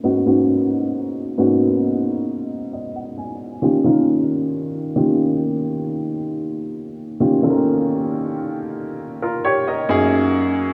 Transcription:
\new Staff \with { instrumentName = "Grand piano" } { \time 4/4 \key dis \minor \tempo 4 = 67 << { r2. dis''16 fis''16 gis''8 | r1 | r2 r16 <eis' ais'>16 <g' cis''>16 <ais' dis''>8 r8. | } \\ { <gis, ais b cis' dis' fis'>16 <gis, ais b cis' dis' fis'>8. r8 <gis, ais b cis' dis' fis'>4~ <gis, ais b cis' dis' fis'>16 r4 r16 | <dis ais cis' eis' g'>16 <dis ais cis' eis' ais'>8. r8 <dis ais cis' eis' g'>4~ <dis ais cis' eis' g'>16 r4 r16 | <dis ais cis' eis' g'>16 <dis ais cis' eis' a' ais'>8. r2 <fis, ais cis' dis' gis'>8. r16 | } >> }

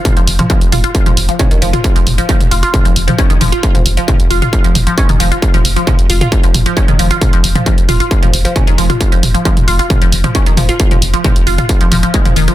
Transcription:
<<
  \new Staff \with { instrumentName = "Synth arpeggio sound" } { \clef bass \time 4/4 \key c \phrygian \tempo 4 = 134 r16 f16 r16 f16 f16 r16 f'16 f'16 r16 f16 r16 f16 des'16 ees16 f16 f'16 | r16 f16 r16 f16 f16 r16 f'16 f'16 r16 f16 r16 f16 des'16 ees16 f16 f'16 | r16 f16 r16 f16 f16 r16 f'16 f'16 r16 f16 r16 f16 des'16 ees16 f16 f'16 | r16 f16 r16 f16 f16 r16 f'16 f'16 r16 f16 r16 f16 des'16 ees16 f16 f'16 |
r16 f16 r16 f16 f16 r16 f'16 f'16 r16 f16 r16 f16 des'16 ees16 f16 f'16 | r16 f16 r16 f16 f16 r16 f'16 f'16 r16 f16 r16 f16 des'16 ees16 f16 f'16 | r16 f16 r16 f16 f16 r16 f'16 f'16 r16 f16 f16 f16 aes16 f16 ees16 f16 | }
  \new Staff \with { instrumentName = "Sub bass" } { \clef bass \time 4/4 \key c \phrygian r16 f,,16 f,,16 r8 f,,16 f,,16 r8 f,,16 f,,16 r8 f,,16 f,,16 r16 | r16 f,,16 f,,16 r8 f,,16 f,,16 r8 f,,16 f,,16 r8 f,,16 f,,16 r16 | r16 f,,16 f,,16 r8 f,,16 f,,16 r8 f,,16 f,,16 r8 f,,16 f,,16 r16 | r16 f,,16 f,,16 r8 f,,16 f,,16 r8 f,,16 f,,16 r8 f,,16 f,,16 r16 |
r16 f,,16 f,,16 r8 f,,16 f,,16 r8 f,,16 f,,16 r8 f,,16 f,,16 r16 | r16 f,,16 f,,16 r8 f,,16 f,,16 r8 f,,16 f,,16 r8 f,,16 f,,16 r16 | r16 f,,16 f,,16 r8 f,,16 f,,16 r8 f,,16 f,,16 r8 f,,16 f,,16 r16 | }
  \new DrumStaff \with { instrumentName = "Drums" } \drummode { \time 4/4 <hh bd toml>16 hh16 hho16 <hh toml>16 <hh bd>16 hh16 <hho toml>16 hh16 <hh bd>16 <hh toml>16 hho16 hh16 <hh bd toml>16 hh16 hho16 <hh toml>16 | <hh bd>16 hh16 <hho toml>16 hh16 <hh bd>16 <hh toml>16 hho16 hh16 <hh bd toml>16 hh16 hho16 <hh toml>16 <hh bd>16 hh16 <hho toml>16 hh16 | <hh bd>16 <hh toml>16 hho16 hh16 <hh bd toml>16 hh16 hho16 <hh toml>16 <hh bd>16 hh16 <hho toml>16 hh16 <hh bd>16 <hh toml>16 hho16 hh16 | <hh bd>16 <hh toml>16 hho16 hh16 <hh bd toml>16 hh16 hho16 <hh toml>16 <hh bd>16 hh16 <hho toml>16 hh16 <hh bd>16 <hh toml>16 hho16 hh16 |
<hh bd toml>16 hh16 hho16 <hh toml>16 <hh bd>16 hh16 <hho toml>16 hh16 <hh bd>16 <hh toml>16 hho16 hh16 <hh bd toml>16 hh16 hho16 <hh toml>16 | <hh bd>16 hh16 <hho toml>16 hh16 <hh bd>16 <hh toml>16 hho16 hh16 <hh bd toml>16 hh16 hho16 <hh toml>16 <hh bd>16 hh16 <hho toml>16 hh16 | <hh bd>16 <hh toml>16 hho16 hh16 <hh bd toml>16 hh16 hho16 <hh toml>16 <hh bd>16 hh16 <hho toml>16 hh16 <hh bd>16 <hh toml>16 hho16 hh16 | }
>>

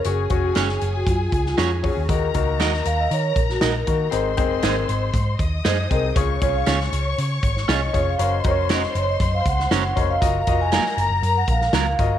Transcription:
<<
  \new Staff \with { instrumentName = "String section" } { \time 4/4 \key ges \lydian \tempo 4 = 118 <aes' aes''>1 | <bes' bes''>1 | <c'' c'''>2~ <c'' c'''>8 <ees'' ees'''>4. | <des'' des'''>1 |
<c'' c'''>1 | <bes' bes''>1 | }
  \new Staff \with { instrumentName = "Vibraphone" } { \time 4/4 \key ges \lydian aes'8 ges'16 aes'16 r8. ges'16 f'8. f'8. aes'8~ | aes'8 r4 f''16 ees''16 des''8 bes'16 ges'16 bes'4~ | bes'4. r4. c''8 bes'16 aes'16~ | aes'8 des''16 f''8 r4. r16 ees''8 des''16 f''16~ |
f''16 ees''16 des''8 ees''8 des''16 ees''8 f''16 ges''4 ees''16 f''16~ | f''8. aes''8. bes''8. ges''16 f''4. | }
  \new Staff \with { instrumentName = "Clean electric guitar" } { \time 4/4 \key ges \lydian r4 <des' ges' aes' des''>8 r4. <des' ges' aes' des''>8 r8 | r4 <ees' ges' bes' ees''>8 r4. <ees' ges' bes' ees''>8 r8 | r4 <ees' aes' c'' ees''>8 r4. <ees' aes' c'' ees''>8 r8 | r4 <des' f' aes' des''>8 r4. <des' f' aes' des''>8 r8 |
r4 <des' ges' bes' des''>8 r4. <des' ges' bes' des''>8 r8 | r4 <ges bes f' bes'>8 r4. <ges bes f' bes'>8 r8 | }
  \new Staff \with { instrumentName = "Grand piano" } { \time 4/4 \key ges \lydian <des' ges' aes' des''>8 <des' ges' aes' des''>4. r4. <des' ges' aes' des''>8 | <bes ees' ges' bes'>8 <bes ees' ges' bes'>4. r4. <bes ees' ges' bes'>8 | <c' ees' aes' c''>8 <c' ees' aes' c''>4. r4. <c' ees' aes' c''>8 | <des' f' aes' des''>8 <des' f' aes' des''>4. r4. <des' f' aes' des''>8 |
<des' ges' bes' des''>8 <des' ges' bes' c'' des''>4. r4. <des' ges' bes' des''>8 | <f' ges' bes' ees''>8 <f' ges' bes' ees''>4. r4. <f' ges' bes' ees''>8 | }
  \new Staff \with { instrumentName = "Grand piano" } { \clef bass \time 4/4 \key ges \lydian r1 | ees4. r2 r8 | aes,4. r2 r8 | des4. r2 r8 |
r1 | r1 | }
  \new Staff \with { instrumentName = "Picked electric bass" } { \clef bass \time 4/4 \key ges \lydian ges,,8 f,,8 ges,,8 ges,,8 ges,8 des,8 f,8. ees,16 | ees,8 des,8 ees,8 ees,8 ees8 bes,,8 bes,,8 ees8 | aes,,8 ges,,8 aes,,8 aes,,8 aes,8 ees,8 ges,8 c,8 | des,8 c,8 des,8 des,8 des8 aes,,8 c,8 f,,8 |
ges,,8 f,,4 ges,,8 ges,8 des,8 ges,,8 f,,8 | ges,,8 f,,8. r16 ges,,16 ges,,16 ges,8 bes,,8 des,8 g,,8 | }
  \new DrumStaff \with { instrumentName = "Drums" } \drummode { \time 4/4 hh8 <hh bd>8 <hh sn>16 sn16 hh8 <hh bd>8 <hh bd>16 sn16 <hh sn>8 <hho bd>8 | <hh bd>8 <hh bd>8 <hh sn>16 sn16 hh8 hh8 <hh bd>16 sn16 <hh sn>8 <hh bd>8 | hh8 <hh bd>8 <hh sn>8 hh8 <hh bd>8 <hh bd>8 <hh sn>8 <hh bd>8 | <hh bd>8 <hh bd>8 <hh sn>16 sn16 hh8 hh8 <hh bd>16 sn16 <hh sn>8 <hh bd>8 |
hh8 <hh bd>8 <hh sn>16 sn16 hh8 <hh bd>8 <hh bd>16 sn16 <hh sn>8 <hh bd>8 | <hh bd>8 <hh bd>8 <hh sn>16 sn16 hh8 hh8 <hh bd>16 sn16 <hh sn>8 <hh bd>8 | }
>>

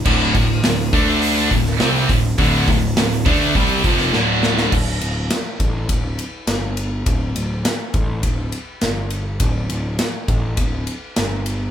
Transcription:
<<
  \new Staff \with { instrumentName = "Distorted electric guitar" } { \clef bass \time 4/4 \key d \minor \tempo 4 = 102 <d, a, d>8 <d, a,>8 <d, a,>8 <d a d'>4 <d, a,>8 <c g c'>8 <d, a,>8 | <d, a, d>8 <d, a,>8 <d, a,>8 <d a d'>8 <c g c'>8 <f, c f>8 <d, a, d>4 | r1 | r1 |
r1 | }
  \new Staff \with { instrumentName = "Distorted electric guitar" } { \clef bass \time 4/4 \key d \minor <d, a, d>8 <d, a,>8 <d, a,>8 <d a d'>4 <d, a,>8 <c g c'>8 <d, a,>8 | <d, a, d>8 <d, a,>8 <d, a,>8 <d a d'>8 <c g c'>8 <f, c f>8 <d, a, d>4 | r1 | r1 |
r1 | }
  \new Staff \with { instrumentName = "Overdriven electric guitar" } { \clef bass \time 4/4 \key d \minor <d, a, d>8 <d, a,>8 <d, a,>8 <d a d'>4 <d, a,>8 <c g c'>8 <d, a,>8 | <d, a, d>8 <d, a,>8 <d, a,>8 <d a d'>8 <c g c'>8 <f, c f>8 <d, a, d>4 | r1 | r1 |
r1 | }
  \new Staff \with { instrumentName = "Picked electric bass" } { \clef bass \time 4/4 \key d \minor d,,8 d,,8 d,,8 d,4 d,,8 c,8 d,,8 | d,,8 d,,8 d,,8 d,8 c,8 f,,8 d,,4 | d,,8 d,,8 r8 a,,8 d,,8 r8 g,,4 | d,,8 d,,8 r8 a,,8 d,,8 r8 g,,4 |
d,,8 d,,8 r8 a,,8 d,,8 r8 g,,4 | }
  \new DrumStaff \with { instrumentName = "Drums" } \drummode { \time 4/4 <cymc bd>8 <hho bd>8 <hho sn>8 <hho bd>8 hho8 <hho bd>16 sn16 <hho sn>8 <hho bd>8 | <hho bd>8 <hho bd>8 <hho sn>8 <hho bd>8 <hho bd>8 <hho bd>16 sn16 sn8 sn16 sn16 | <cymc bd>8 cymr8 <cymr sn>8 <bd cymr>8 <bd cymr>8 cymr8 <cymr sn>8 cymr8 | <bd cymr>8 cymr8 <cymr sn>8 <bd cymr>8 <bd cymr>8 cymr8 <cymr sn>8 cymr8 |
<bd cymr>8 cymr8 <cymr sn>8 <bd cymr>8 <bd cymr>8 cymr8 <cymr sn>8 cymr8 | }
>>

